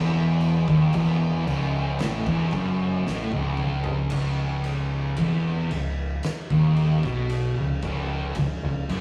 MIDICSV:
0, 0, Header, 1, 4, 480
1, 0, Start_track
1, 0, Key_signature, 4, "minor"
1, 0, Tempo, 1058201
1, 1870, Time_signature, 4, 2, 24, 8
1, 4086, End_track
2, 0, Start_track
2, 0, Title_t, "Distorted electric guitar"
2, 0, Program_c, 0, 30
2, 0, Note_on_c, 0, 40, 109
2, 302, Note_off_c, 0, 40, 0
2, 313, Note_on_c, 0, 39, 106
2, 424, Note_off_c, 0, 39, 0
2, 432, Note_on_c, 0, 40, 108
2, 664, Note_off_c, 0, 40, 0
2, 670, Note_on_c, 0, 37, 106
2, 903, Note_off_c, 0, 37, 0
2, 910, Note_on_c, 0, 45, 96
2, 1023, Note_off_c, 0, 45, 0
2, 1035, Note_on_c, 0, 40, 103
2, 1145, Note_off_c, 0, 40, 0
2, 1152, Note_on_c, 0, 42, 101
2, 1384, Note_off_c, 0, 42, 0
2, 1390, Note_on_c, 0, 45, 104
2, 1503, Note_off_c, 0, 45, 0
2, 1511, Note_on_c, 0, 37, 94
2, 1863, Note_off_c, 0, 37, 0
2, 1872, Note_on_c, 0, 37, 97
2, 2343, Note_off_c, 0, 37, 0
2, 2352, Note_on_c, 0, 40, 100
2, 2584, Note_off_c, 0, 40, 0
2, 2593, Note_on_c, 0, 37, 72
2, 2783, Note_off_c, 0, 37, 0
2, 2954, Note_on_c, 0, 39, 100
2, 3184, Note_off_c, 0, 39, 0
2, 3192, Note_on_c, 0, 47, 97
2, 3424, Note_off_c, 0, 47, 0
2, 3431, Note_on_c, 0, 37, 70
2, 3551, Note_off_c, 0, 37, 0
2, 3556, Note_on_c, 0, 37, 102
2, 3786, Note_off_c, 0, 37, 0
2, 3792, Note_on_c, 0, 37, 69
2, 3910, Note_off_c, 0, 37, 0
2, 3916, Note_on_c, 0, 37, 73
2, 4032, Note_off_c, 0, 37, 0
2, 4034, Note_on_c, 0, 42, 98
2, 4086, Note_off_c, 0, 42, 0
2, 4086, End_track
3, 0, Start_track
3, 0, Title_t, "Fingered electric bass"
3, 0, Program_c, 1, 33
3, 0, Note_on_c, 1, 28, 99
3, 289, Note_off_c, 1, 28, 0
3, 308, Note_on_c, 1, 27, 97
3, 421, Note_off_c, 1, 27, 0
3, 426, Note_on_c, 1, 28, 98
3, 651, Note_off_c, 1, 28, 0
3, 665, Note_on_c, 1, 25, 105
3, 890, Note_off_c, 1, 25, 0
3, 910, Note_on_c, 1, 33, 97
3, 1022, Note_off_c, 1, 33, 0
3, 1026, Note_on_c, 1, 28, 97
3, 1140, Note_off_c, 1, 28, 0
3, 1146, Note_on_c, 1, 30, 98
3, 1371, Note_off_c, 1, 30, 0
3, 1391, Note_on_c, 1, 33, 100
3, 1501, Note_off_c, 1, 33, 0
3, 1503, Note_on_c, 1, 25, 90
3, 1848, Note_off_c, 1, 25, 0
3, 1869, Note_on_c, 1, 25, 85
3, 2331, Note_off_c, 1, 25, 0
3, 2350, Note_on_c, 1, 28, 93
3, 2573, Note_off_c, 1, 28, 0
3, 2588, Note_on_c, 1, 25, 76
3, 2812, Note_off_c, 1, 25, 0
3, 2950, Note_on_c, 1, 27, 92
3, 3173, Note_off_c, 1, 27, 0
3, 3191, Note_on_c, 1, 35, 85
3, 3414, Note_off_c, 1, 35, 0
3, 3422, Note_on_c, 1, 25, 70
3, 3537, Note_off_c, 1, 25, 0
3, 3549, Note_on_c, 1, 25, 96
3, 3773, Note_off_c, 1, 25, 0
3, 3789, Note_on_c, 1, 25, 78
3, 3902, Note_off_c, 1, 25, 0
3, 3910, Note_on_c, 1, 25, 78
3, 4022, Note_off_c, 1, 25, 0
3, 4027, Note_on_c, 1, 30, 94
3, 4086, Note_off_c, 1, 30, 0
3, 4086, End_track
4, 0, Start_track
4, 0, Title_t, "Drums"
4, 184, Note_on_c, 9, 49, 68
4, 229, Note_off_c, 9, 49, 0
4, 308, Note_on_c, 9, 36, 99
4, 353, Note_off_c, 9, 36, 0
4, 421, Note_on_c, 9, 49, 84
4, 427, Note_on_c, 9, 36, 102
4, 467, Note_off_c, 9, 49, 0
4, 472, Note_off_c, 9, 36, 0
4, 668, Note_on_c, 9, 49, 67
4, 713, Note_off_c, 9, 49, 0
4, 903, Note_on_c, 9, 49, 79
4, 910, Note_on_c, 9, 38, 122
4, 948, Note_off_c, 9, 49, 0
4, 955, Note_off_c, 9, 38, 0
4, 1027, Note_on_c, 9, 36, 123
4, 1073, Note_off_c, 9, 36, 0
4, 1139, Note_on_c, 9, 49, 56
4, 1147, Note_on_c, 9, 36, 96
4, 1184, Note_off_c, 9, 49, 0
4, 1192, Note_off_c, 9, 36, 0
4, 1391, Note_on_c, 9, 38, 70
4, 1437, Note_off_c, 9, 38, 0
4, 1505, Note_on_c, 9, 48, 73
4, 1550, Note_off_c, 9, 48, 0
4, 1621, Note_on_c, 9, 45, 94
4, 1666, Note_off_c, 9, 45, 0
4, 1741, Note_on_c, 9, 43, 94
4, 1786, Note_off_c, 9, 43, 0
4, 1859, Note_on_c, 9, 57, 109
4, 1868, Note_on_c, 9, 36, 109
4, 1904, Note_off_c, 9, 57, 0
4, 1914, Note_off_c, 9, 36, 0
4, 2104, Note_on_c, 9, 51, 74
4, 2150, Note_off_c, 9, 51, 0
4, 2343, Note_on_c, 9, 51, 98
4, 2349, Note_on_c, 9, 36, 108
4, 2389, Note_off_c, 9, 51, 0
4, 2395, Note_off_c, 9, 36, 0
4, 2590, Note_on_c, 9, 51, 78
4, 2635, Note_off_c, 9, 51, 0
4, 2826, Note_on_c, 9, 51, 102
4, 2833, Note_on_c, 9, 38, 111
4, 2871, Note_off_c, 9, 51, 0
4, 2879, Note_off_c, 9, 38, 0
4, 2950, Note_on_c, 9, 36, 118
4, 2996, Note_off_c, 9, 36, 0
4, 3069, Note_on_c, 9, 51, 66
4, 3114, Note_off_c, 9, 51, 0
4, 3190, Note_on_c, 9, 36, 111
4, 3194, Note_on_c, 9, 38, 31
4, 3235, Note_off_c, 9, 36, 0
4, 3239, Note_off_c, 9, 38, 0
4, 3309, Note_on_c, 9, 51, 99
4, 3355, Note_off_c, 9, 51, 0
4, 3549, Note_on_c, 9, 51, 72
4, 3551, Note_on_c, 9, 36, 97
4, 3594, Note_off_c, 9, 51, 0
4, 3596, Note_off_c, 9, 36, 0
4, 3787, Note_on_c, 9, 51, 100
4, 3791, Note_on_c, 9, 36, 93
4, 3832, Note_off_c, 9, 51, 0
4, 3836, Note_off_c, 9, 36, 0
4, 4035, Note_on_c, 9, 51, 75
4, 4080, Note_off_c, 9, 51, 0
4, 4086, End_track
0, 0, End_of_file